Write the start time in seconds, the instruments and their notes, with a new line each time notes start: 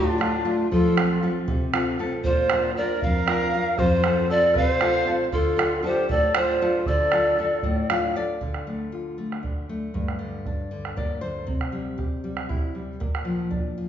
Already playing: nylon-string guitar A2, quena D4, pan flute F4
0.18 nylon-string guitar A3 D4 F4, bombo rim
0.45 nylon-string guitar A3 D4 F4
0.71 nylon-string guitar F3, quena F4, pan flute A4, bombo rim, bombo low
0.97 nylon-string guitar C4 F4 A4, bombo rim
1.23 nylon-string guitar C4 F4 A4, bombo rim
1.48 nylon-string guitar C3, bombo rim, bombo low
1.73 nylon-string guitar C4 F4 A4, bombo rim
1.87 bombo rim
1.99 nylon-string guitar C4 F4 A4
2.13 bombo rim
2.24 nylon-string guitar A#2, quena F4, pan flute C5, bombo low
2.50 nylon-string guitar D4 F4 A#4, bombo rim
2.76 nylon-string guitar D4 F4 A#4, quena A#4, pan flute D5, bombo rim
2.89 bombo rim
3.01 nylon-string guitar F2, quena A#4, pan flute F5, bombo low
3.28 nylon-string guitar D4 F4 A#4, bombo rim
3.54 nylon-string guitar D4 F4 A#4
3.78 nylon-string guitar F2, quena F4, pan flute C5, bombo low
4.03 nylon-string guitar C4 F4 A4, bombo rim
4.28 nylon-string guitar C4 F4 A4, quena A4, pan flute D5, bombo rim
4.44 bombo rim
4.54 nylon-string guitar C3, quena B4, pan flute F5, bombo low
4.69 quena C5
4.81 nylon-string guitar C4 F4 A4, bombo rim
5.07 nylon-string guitar C4 F4 A4
5.31 nylon-string guitar D3, quena F4, pan flute A4, bombo low
5.57 nylon-string guitar D4 F4 A4, bombo rim
5.83 nylon-string guitar D4 F4 A4, quena G4, pan flute C5, bombo rim
5.97 bombo rim
6.09 nylon-string guitar A2, quena A4, pan flute D5, bombo low
6.34 nylon-string guitar D4 F4 A4, pan flute C5, bombo rim
6.38 quena F4
6.62 nylon-string guitar D4 F4 A4
6.86 nylon-string guitar D3, quena A4, pan flute D5, bombo low
7.12 nylon-string guitar D4 F4 A4, bombo rim
7.37 nylon-string guitar D4 F4 A4, bombo rim
7.63 nylon-string guitar A2, bombo low
7.76 bombo rim
7.90 nylon-string guitar D4 F4 A4 F5, bombo rim
8.15 nylon-string guitar D4 F4 A4 D5, bombo rim
8.41 nylon-string guitar D3, bombo low
8.54 bombo rim
8.67 nylon-string guitar A3, bombo rim
8.92 nylon-string guitar F4, bombo rim
9.18 nylon-string guitar A3
9.32 bombo rim
9.43 nylon-string guitar D4, bombo low
9.69 nylon-string guitar A3
9.94 nylon-string guitar G2, bombo low
10.08 bombo rim
10.19 nylon-string guitar D3, bombo rim
10.46 nylon-string guitar D4, bombo rim, bombo low
10.71 nylon-string guitar D3
10.85 bombo rim
10.97 nylon-string guitar A#3 D5, bombo low
11.21 nylon-string guitar D3 C5
11.47 nylon-string guitar C3, bombo low
11.61 bombo rim
11.72 nylon-string guitar G3, bombo rim
11.98 nylon-string guitar G4, bombo rim, bombo low
12.24 nylon-string guitar G3
12.37 bombo rim
12.49 nylon-string guitar E4, bombo low
12.75 nylon-string guitar G3
13.00 nylon-string guitar A#2, bombo rim, bombo low
13.15 bombo rim
13.25 nylon-string guitar F3
13.51 nylon-string guitar D4, bombo low
13.78 nylon-string guitar F3